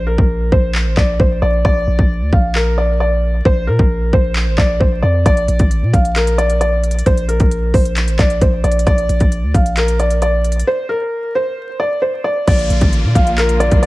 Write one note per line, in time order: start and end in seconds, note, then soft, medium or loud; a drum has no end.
0.00 0.17 A#1 loud
0.07 0.49 A#4 medium
0.18 0.51 A#1 loud
0.18 kick loud
0.52 0.87 A#1 loud
0.52 0.94 C5 medium
0.52 kick medium
0.75 clap loud
0.86 0.97 A1 loud
0.97 1.19 A#1 loud
0.97 1.17 D5 medium
0.97 kick medium
0.97 clap loud
1.20 1.41 A#1 loud
1.20 1.40 C5 medium
1.20 kick medium
1.42 1.64 A#1 loud
1.42 1.62 D5 medium
1.65 1.87 A#1 loud
1.65 2.29 D5 loud
1.65 kick loud
1.87 1.98 A#1 loud
1.99 2.23 A#1 loud
1.99 kick medium
2.21 2.32 D2 loud
2.33 3.41 A#1 loud
2.33 2.53 F5 medium
2.33 kick medium
2.55 2.75 A#4 medium
2.55 clap loud
2.78 2.98 D5 medium
3.00 3.43 D5 medium
3.45 3.69 A#1 loud
3.45 3.66 C5 medium
3.45 kick loud
3.67 3.79 A#2 loud
3.67 4.10 A#4 medium
3.79 4.12 A#1 loud
3.79 kick loud
4.13 4.48 A#1 loud
4.13 4.56 C5 medium
4.13 kick medium
4.36 clap loud
4.47 4.58 A1 loud
4.58 4.80 A#1 loud
4.58 4.78 D5 medium
4.58 kick medium
4.58 clap loud
4.80 5.02 A#1 loud
4.80 5.00 C5 medium
4.80 kick loud
5.03 5.25 F2 loud
5.03 5.23 D5 medium
5.26 5.47 A#1 loud
5.26 5.89 D5 loud
5.26 kick loud
5.26 closed hi-hat medium
5.37 closed hi-hat medium
5.48 5.59 A#1 loud
5.48 closed hi-hat medium
5.59 5.84 A1 loud
5.59 kick loud
5.59 closed hi-hat medium
5.71 closed hi-hat medium
5.82 5.93 A#2 loud
5.93 7.02 A#1 loud
5.93 6.13 F5 medium
5.93 kick medium
5.93 closed hi-hat medium
6.05 closed hi-hat medium
6.16 6.36 A#4 medium
6.16 clap loud
6.16 closed hi-hat medium
6.27 closed hi-hat medium
6.38 6.58 D5 medium
6.38 closed hi-hat medium
6.50 closed hi-hat medium
6.61 7.03 D5 medium
6.61 closed hi-hat medium
6.84 closed hi-hat medium
6.91 closed hi-hat medium
6.99 closed hi-hat medium
7.06 7.39 A#1 loud
7.06 7.26 C5 medium
7.06 kick loud
7.06 closed hi-hat medium
7.17 closed hi-hat medium
7.28 7.71 A#4 medium
7.28 closed hi-hat medium
7.40 7.73 A#1 loud
7.40 kick loud
7.40 closed hi-hat soft
7.51 closed hi-hat medium
7.74 8.09 A#1 loud
7.74 8.16 C5 medium
7.74 kick loud
7.74 open hi-hat medium
7.85 closed hi-hat medium
7.96 clap loud
7.96 closed hi-hat medium
8.08 8.18 A1 loud
8.08 closed hi-hat medium
8.19 8.41 A#1 loud
8.19 8.39 D5 medium
8.19 kick medium
8.19 clap loud
8.19 closed hi-hat medium
8.30 closed hi-hat medium
8.42 8.63 A#1 loud
8.42 8.62 C5 medium
8.42 kick loud
8.42 closed hi-hat medium
8.64 8.86 A#1 loud
8.64 8.84 D5 medium
8.64 closed hi-hat medium
8.72 closed hi-hat medium
8.79 closed hi-hat medium
8.87 9.08 A#1 loud
8.87 9.50 D5 loud
8.87 kick loud
8.87 closed hi-hat medium
8.98 closed hi-hat medium
9.09 9.20 A#1 loud
9.09 closed hi-hat medium
9.20 9.45 A#1 loud
9.20 kick loud
9.20 closed hi-hat medium
9.32 closed hi-hat medium
9.43 9.54 D2 loud
9.54 10.63 A#1 loud
9.54 9.74 F5 medium
9.54 kick loud
9.54 closed hi-hat medium
9.66 closed hi-hat medium
9.77 9.97 A#4 medium
9.77 clap loud
9.77 closed hi-hat medium
9.88 closed hi-hat medium
9.99 10.20 D5 medium
9.99 closed hi-hat medium
10.11 closed hi-hat medium
10.22 10.64 D5 medium
10.22 closed hi-hat medium
10.45 closed hi-hat medium
10.52 closed hi-hat medium
10.60 closed hi-hat medium
10.67 10.87 C5 medium
10.89 11.32 A#4 medium
11.35 11.77 C5 medium
11.80 12.00 D5 medium
12.02 12.22 C5 medium
12.24 12.45 D5 medium
12.48 12.69 A#1 loud
12.48 13.86 D3 medium
12.48 13.86 A#3 medium
12.48 13.86 F4 medium
12.48 13.11 D5 loud
12.48 kick loud
12.48 closed hi-hat medium
12.48 crash loud
12.48 downlifter medium
12.59 closed hi-hat medium
12.70 12.81 A#1 loud
12.70 closed hi-hat medium
12.81 13.05 A1 loud
12.81 kick loud
12.81 closed hi-hat medium
12.93 closed hi-hat medium
13.04 13.15 A#2 loud
13.15 13.69 A#1 loud
13.15 13.35 F5 medium
13.15 kick loud
13.15 closed hi-hat medium
13.27 closed hi-hat medium
13.38 13.58 A#4 medium
13.38 clap loud
13.38 closed hi-hat medium
13.49 closed hi-hat medium
13.60 13.80 D5 medium
13.60 closed hi-hat medium
13.71 13.86 A#1 loud
13.71 kick loud
13.71 closed hi-hat medium
13.83 13.86 D5 medium
13.83 closed hi-hat medium